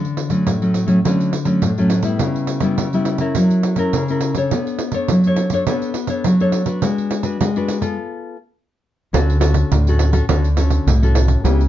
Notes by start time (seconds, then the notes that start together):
Already playing: D3
0.05 pandeiro
0.17 pandeiro
0.30 F#3 A3 C#4, pandeiro
0.46 A2, pandeiro
0.62 F#3 A3 C#4, pandeiro
0.74 pandeiro
0.87 F#3 A3 C#4, pandeiro
1.04 D3 F#3 A3 C#4, pandeiro
1.20 pandeiro
1.33 pandeiro
1.45 F#3 A3 C#4, pandeiro
1.62 A2, pandeiro
1.78 F#3 A3 C#4, pandeiro
1.90 pandeiro
2.03 G3 B3 E4, pandeiro
2.19 C#3, pandeiro
2.36 pandeiro
2.47 pandeiro
2.60 G3 B3 E4, pandeiro
2.78 C#3, pandeiro
2.93 G3 B3 E4, pandeiro
3.05 pandeiro
3.18 C#4 E4 A#4, pandeiro
3.35 F#3, pandeiro
3.50 pandeiro
3.63 pandeiro
3.76 C#4 E4 A#4, pandeiro
3.93 C#3, pandeiro
4.08 C#4 E4 A#4, pandeiro
4.21 pandeiro
4.35 D4 A4 C#5, pandeiro
4.51 B3, pandeiro
4.67 pandeiro
4.79 pandeiro
4.92 D4 A4 C#5, pandeiro
5.08 F#3, pandeiro
5.24 D4 A4 C#5, pandeiro
5.36 pandeiro
5.50 D4 A4 C#5, pandeiro
5.67 B3 D4 A4 C#5, pandeiro
5.82 pandeiro
5.94 pandeiro
6.07 D4 A4 C#5, pandeiro
6.24 F#3, pandeiro
6.40 D4 A4 C#5, pandeiro
6.52 pandeiro
6.66 D4 F#4 B4, pandeiro
6.82 G#3, pandeiro
6.98 pandeiro
7.11 pandeiro
7.23 D4 F#4 B4, pandeiro
7.41 G#3, pandeiro
7.56 D4 F#4 B4, pandeiro
7.68 pandeiro
7.81 B3 F4 A4, pandeiro
9.13 D2 D3 C#4 F#4 A4, pandeiro
9.30 pandeiro
9.40 C#4 F#4 A4, pandeiro
9.54 pandeiro
9.71 D2 A2, pandeiro
9.87 C#4 F#4 A4, pandeiro
9.99 pandeiro
10.13 C#4 F#4 A4, pandeiro
10.29 D2 D3 C#4 F#4 A4, pandeiro
10.44 pandeiro
10.57 C#4 F#4 A4, pandeiro
10.70 pandeiro
10.86 C2 A2, pandeiro
11.02 C#4 F#4 A4, pandeiro
11.15 pandeiro
11.28 pandeiro
11.44 C#2 C#3 B3 E4 G4, pandeiro
11.61 pandeiro